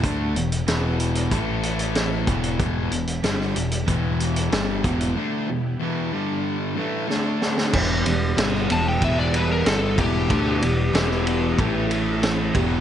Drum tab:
CC |----------------|----------------|----------------|x---------------|
RD |----------------|----------------|----------------|--x-x-x-x-x-x-x-|
HH |x-xxx-xxx-xxx-xx|x-xxx-xxx-xxx-xx|----------------|----------------|
SD |----o-------o---|----oo------o---|------------o-oo|----oo------o---|
BD |o-------o-----o-|o-------o-----o-|----------------|o-------o-----o-|

CC |----------------|
RD |x-x-x-x-x-x-x-x-|
HH |----------------|
SD |----oo------o---|
BD |o-------o-----o-|